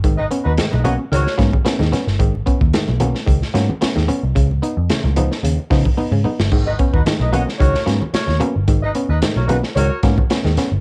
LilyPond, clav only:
\new Staff \with { instrumentName = "Clav" } { \time 4/4 \key gis \dorian \tempo 4 = 111 <gis, dis>16 r16 <b cis'>16 r16 <gis, dis>16 r16 <fis ais b cis'>16 <b cis'>16 <gis, dis>16 r16 <fis ais b cis'>16 <b cis'>16 <b cis'>16 <gis, dis>16 <b cis'>16 r16 | <gis, dis>16 r16 <b cis'>16 r16 <gis, dis>16 r16 <fis ais b cis'>16 <b cis'>16 <gis, dis>16 r16 <fis ais b cis'>16 <b cis'>16 <b cis'>16 <gis, dis>16 <b cis'>16 r16 | cis16 r16 <b dis'>16 r16 cis16 r16 <eis b dis'>16 <b dis'>16 cis16 r16 <eis b dis'>16 <b dis'>16 <b dis'>16 cis16 <b dis'>16 r16 | <gis, dis>16 r16 <b cis'>16 r16 <gis, dis>16 r16 <fis ais b cis'>16 <b cis'>16 <gis, dis>16 r16 <fis ais b cis'>16 <b cis'>16 r8 <fis ais b cis'>16 r16 |
<gis, dis>16 r16 <b cis'>16 r16 <gis, dis>16 r16 <fis ais b cis'>16 <b cis'>16 <gis, dis>16 r16 <fis ais b cis'>16 <b cis'>16 <b cis'>16 <gis, dis>16 <b cis'>16 r16 | }